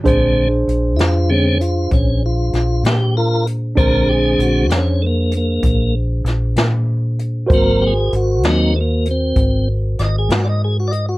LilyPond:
<<
  \new Staff \with { instrumentName = "Tine electric piano" } { \time 12/8 \key bes \dorian \tempo 4. = 64 <d' aes' c''>1. | <d' aes' c''>1. | <ges' bes' c''>1. | }
  \new Staff \with { instrumentName = "Tonewheel organ" } { \time 12/8 \key bes \dorian r4. <fes' f'>8 des'8 f'8 des'8 f'4 g'8 <f' bes'>8 r8 | bes'8 <g' aes'>8 ges'8 <c' des'>8 <a bes>8 bes4 r2 r8 | bes'8 <g' aes'>8 ges'8 <d' ees'>8 <a bes>8 c'4 r8 <d'' ees''>16 aes'16 ges'16 <d'' ees''>16 aes'16 ges'16 <d'' ees''>16 ges'16 | }
  \new Staff \with { instrumentName = "Tonewheel organ" } { \clef bass \time 12/8 \key bes \dorian <d aes c'>8 r4. <d aes c'>8 r2. r8 | <d aes c'>4. r1 r8 | <ges bes c'>8 r4 <ges bes c'>8 r1 | }
  \new Staff \with { instrumentName = "Fingered electric bass" } { \clef bass \time 12/8 \key bes \dorian bes,,4 bes,,8 f,4. bes,,4 bes,,8 bes,4. | bes,,4 bes,,8 f,4. bes,,4 bes,,8 bes,4. | aes,,4 aes,,8 ees,4. aes,,4 aes,,8 aes,4. | }
  \new DrumStaff \with { instrumentName = "Drums" } \drummode { \time 12/8 <hh bd>4 hh8 <hh sn>4 hh8 <hh bd>4 <hh sn>8 <hh sn>4 hh8 | <hh bd>4 hh8 <hh sn>4 hh8 <hh bd>4 <hh sn>8 <hh sn>4 hh8 | <hh bd>4 hh8 <hh sn>4 hh8 <hh bd>4 <hh sn>8 <hh sn>4 hh8 | }
>>